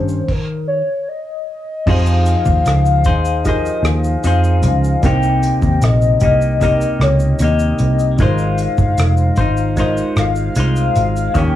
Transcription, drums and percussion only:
0.08 shaker
0.28 kick, crash
1.87 kick, crash
2.06 shaker
2.26 closed hi-hat, shaker
2.46 kick, shaker
2.66 cross-stick, closed hi-hat, shaker
2.85 shaker
3.04 kick, closed hi-hat, shaker
3.25 shaker
3.45 kick, closed hi-hat, shaker
3.65 shaker
3.85 cross-stick, closed hi-hat, shaker
4.04 shaker
4.24 closed hi-hat, shaker
4.44 shaker
4.63 closed hi-hat, shaker
4.84 shaker
5.03 kick, closed hi-hat, shaker
5.23 shaker
5.43 closed hi-hat, shaker
5.62 kick, shaker
5.82 cross-stick, closed hi-hat, shaker
6.02 shaker
6.20 kick, closed hi-hat, shaker
6.41 shaker
6.61 kick, closed hi-hat, shaker
6.81 shaker
7.01 cross-stick, closed hi-hat, shaker
7.20 shaker
7.39 closed hi-hat, shaker
7.59 shaker
7.79 closed hi-hat, shaker
7.99 shaker
8.19 kick, closed hi-hat, shaker
8.38 shaker
8.58 closed hi-hat, shaker
8.78 kick, shaker
8.98 cross-stick, closed hi-hat, shaker
9.17 shaker
9.36 kick, closed hi-hat, shaker
9.57 shaker
9.77 kick, closed hi-hat, shaker
9.97 shaker
10.17 cross-stick, closed hi-hat, shaker
10.36 shaker
10.55 closed hi-hat, shaker
10.76 shaker
10.95 closed hi-hat, shaker
11.16 shaker
11.35 kick, closed hi-hat, shaker

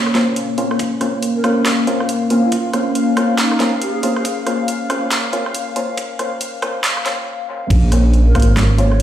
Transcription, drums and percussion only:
0.06 cross-stick
0.15 snare, closed hi-hat
0.36 closed hi-hat
0.58 closed hi-hat
0.71 cross-stick
0.79 kick, closed hi-hat
1.01 cross-stick, closed hi-hat
1.23 closed hi-hat
1.44 cross-stick, closed hi-hat
1.66 snare, closed hi-hat
1.87 closed hi-hat
2.00 cross-stick
2.09 closed hi-hat
2.30 open hi-hat
2.52 kick, closed hi-hat
2.73 cross-stick, closed hi-hat
2.95 closed hi-hat
3.17 kick, cross-stick, closed hi-hat
3.38 snare, closed hi-hat
3.52 cross-stick
3.60 snare, closed hi-hat
3.82 closed hi-hat
4.03 open hi-hat
4.16 cross-stick
4.25 kick, closed hi-hat
4.47 cross-stick, closed hi-hat
4.68 closed hi-hat
4.90 cross-stick, closed hi-hat
5.11 snare, closed hi-hat
5.33 closed hi-hat
5.46 cross-stick
5.55 closed hi-hat
5.76 open hi-hat
5.97 kick, closed hi-hat
6.19 cross-stick, closed hi-hat
6.41 closed hi-hat
6.62 kick, cross-stick, closed hi-hat
6.84 snare, closed hi-hat
6.97 cross-stick
7.06 snare, closed hi-hat
7.70 kick, closed hi-hat, crash
7.92 cross-stick, closed hi-hat
8.13 closed hi-hat
8.35 kick, cross-stick, closed hi-hat
8.40 closed hi-hat
8.42 closed hi-hat
8.57 snare, closed hi-hat
8.78 closed hi-hat
8.92 cross-stick

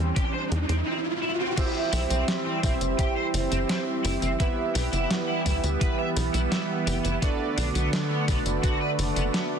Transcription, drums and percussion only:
0.16 kick, closed hi-hat
0.52 closed hi-hat
0.69 closed hi-hat
1.57 kick, closed hi-hat, crash, tambourine
1.93 open hi-hat, tambourine
2.10 closed hi-hat, tambourine
2.28 snare, closed hi-hat, tambourine
2.63 kick, open hi-hat, tambourine
2.81 closed hi-hat, tambourine
2.99 kick, closed hi-hat, tambourine
3.34 open hi-hat, tambourine
3.52 closed hi-hat, tambourine
3.69 snare, closed hi-hat, tambourine
4.05 open hi-hat, tambourine
4.22 closed hi-hat, tambourine
4.40 kick, closed hi-hat, tambourine
4.75 open hi-hat, tambourine
4.93 closed hi-hat, tambourine
5.11 snare, closed hi-hat, tambourine
5.46 kick, snare, open hi-hat, tambourine
5.64 closed hi-hat, tambourine
5.81 kick, closed hi-hat, tambourine
6.17 open hi-hat, tambourine
6.34 closed hi-hat, tambourine
6.52 snare, closed hi-hat, tambourine
6.87 open hi-hat, tambourine
7.05 closed hi-hat, tambourine
7.22 kick, closed hi-hat, tambourine
7.58 open hi-hat, tambourine
7.75 closed hi-hat, tambourine
7.93 snare, closed hi-hat, tambourine
8.28 kick, open hi-hat, tambourine
8.46 closed hi-hat, tambourine
8.63 kick, closed hi-hat, tambourine
8.99 open hi-hat, tambourine
9.16 closed hi-hat, tambourine
9.34 snare, closed hi-hat, tambourine

